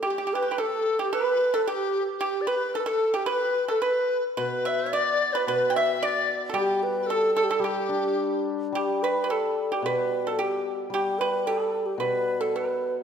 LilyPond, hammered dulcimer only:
\new Staff \with { instrumentName = "Hammered dulcimer" } { \clef bass \time 2/4 \tempo 4 = 111 r2 | r2 | r2 | r2 |
b,2 | b,2 | g2 | g8 d'4. |
g2 | b,2 | g2 | b,2 | }